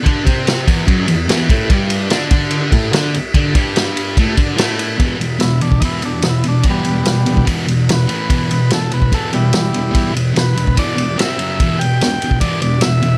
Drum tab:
RD |x-x-x-x-x-x-x-x-|x-x-x-x-x-x-x-x-|x-x-x-x-x-x-x-x-|x-x-x-x-x-x-x-x-|
SD |----o-------o---|----o-------o---|----o-------o---|----o-------o---|
BD |o-o---o-o-----o-|o-----o---o-----|o-o-----o-o-----|o------oo-------|

RD |x-x-x-x-x-x-x-x-|x-x-x-x-x-x-x-x-|x-x-x-x-x-x-x-x-|x-x-x-x-x-x-x-x-|
SD |----o-------o---|----o-------o---|----o-------o---|----o-------o---|
BD |o------oo-------|o------oo-------|o------oo-------|o------oo-------|